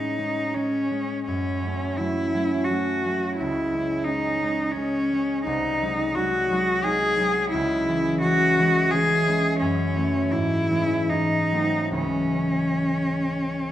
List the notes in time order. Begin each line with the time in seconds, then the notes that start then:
Already playing: A2 G#3 C#4 D#4 E4
0.18 G#3 C#4
0.54 G#3 C#4
0.91 G#3 C#4
1.26 F#2 C#4
1.63 F#3 A3 C#4
1.97 F#3 A3 C#4 E4
2.34 F#3 A3 C#4
2.65 F#4
2.70 F#3 A3 C#4
3.05 F#3 A3 C#4
3.37 C#2 E4
3.74 G#3 C#4
4.05 G#3 C#4 D#4
4.42 G#3 C#4
4.72 C#4
4.76 G#3 C#4
5.13 G#3 C#4
5.45 C2 D#4
5.82 F#3 G#3 D#4
6.15 F#3 G#3 D#4 F#4
6.50 F#3 G#3 D#4
6.85 F#3 G#3 D#4 G#4
7.19 F#3 G#3 D#4
7.51 C#2 E4
7.88 E3 G#3 C#4
8.22 E3 G#3 C#4 F#4
8.58 E3 G#3 C#4
8.91 E3 G#3 G#4
8.95 C#4
9.27 E3 G#3 C#4
9.60 F#2 C#4
9.96 E3 A3 C#4
10.32 G#2 E4
10.70 E3 G#3 C#4
11.10 G#2 D#4
11.52 F#3 A3 C4
11.91 C#2 E3 G#3
11.95 C#4